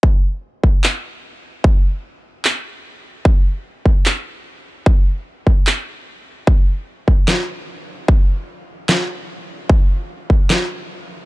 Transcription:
\new DrumStaff \with { instrumentName = "Drums" } \drummode { \time 4/4 \tempo 4 = 149 bd4 r8 bd8 hc4 r4 | bd4 r4 hc4 r4 | bd4 r8 bd8 hc4 r4 | bd4 r8 bd8 hc4 r4 |
bd4 r8 bd8 <hc sn>4 r4 | bd4 r4 <hc sn>4 r4 | bd4 r8 bd8 <hc sn>4 r4 | }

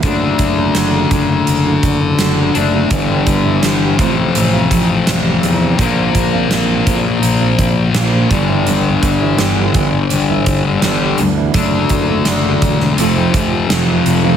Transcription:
<<
  \new Staff \with { instrumentName = "Steel-string acoustic guitar" } { \time 4/4 \key d \dorian \tempo 4 = 83 <fis a d' fis'>8. <a d' fis'>16 <fis a d' fis'>8 <fis a d' fis'>8. <a d' fis'>16 <fis a d' fis'>8 <fis a d' fis'>8. <a d' fis'>16 | <g, d e g b e'>8. <e g b e'>16 <g, d e g b e'>8 <a, f g c' f'>8. <g c' f'>16 <f g c' f'>8 <a, g c' f'>8. <g c' f'>16 | <bes, d bes c' f'>8. <bes c' f'>16 <bes, d bes c' f'>8 <d bes c' f'>8. <bes c' f'>16 <d bes c' f'>8 <bes, d bes c' f'>8 <g, d e g b e'>16 <e g b e'>16 | <g, d e g b e'>8. <e g b e'>16 <g, d e g b e'>8 <e g b e'>8. <e g b e'>16 <e g b e'>8 <g, d e g b e'>8. <e g b e'>16 |
<fis a d' fis'>8. <a d' fis'>16 <fis a d' fis'>8 <fis a d' fis'>8 <f, c f a c' f'>16 <f a c' f'>16 <f a c' f'>8 <f, c f a c' f'>8. <f a c' f'>16 | }
  \new Staff \with { instrumentName = "Distorted electric guitar" } { \clef bass \time 4/4 \key d \dorian <d a d'>2.~ <d a d'>8 <d a d'>8 | <g, d g>4. <f, c f>2~ <f, c f>8 | <bes, f bes>2.~ <bes, f bes>8 <g, d g>8~ | <g, d g>2. <g, d g>8 r8 |
<d a d'>2 <f, c f>2 | }
  \new Staff \with { instrumentName = "Fingered electric bass" } { \clef bass \time 4/4 \key d \dorian fis,,8 fis,,8 fis,,8 fis,,8 fis,,8 fis,,8 fis,,8 fis,,8 | g,,8 g,,8 g,,8 a,,8 a,,8 a,,8 a,,8 e,8 | bes,,8 bes,,8 bes,,8 bes,,8 bes,,8 bes,,8 bes,,8 g,,8 | g,,8 g,,8 g,,8 g,,8 g,,8 g,,8 g,,8 d,8 |
fis,,8 fis,,8 fis,,8 e,,8 f,,8 f,,8 f,,8 f,,8 | }
  \new DrumStaff \with { instrumentName = "Drums" } \drummode { \time 4/4 <hh bd>8 <hh bd>8 <hh sn>8 <hh bd>8 hh8 <hh bd>8 <hh sn>8 hh8 | <hh bd>8 <hh bd>8 <hh sn>8 <hh bd>8 hh8 <hh bd>8 <hh sn>8 hh8 | <hh bd>8 <hh bd>8 <hh sn>8 <hh bd>8 hh8 <hh bd>8 <hh sn>8 <hh bd>8 | hh8 <hh bd>8 <hh sn>8 <hh bd>8 hh8 <hh bd>8 <hh sn>8 hh8 |
<hh bd>8 <hh bd>8 <hh sn>8 <hh bd>16 sn16 hh8 <hh bd>8 <hh sn>8 hh8 | }
>>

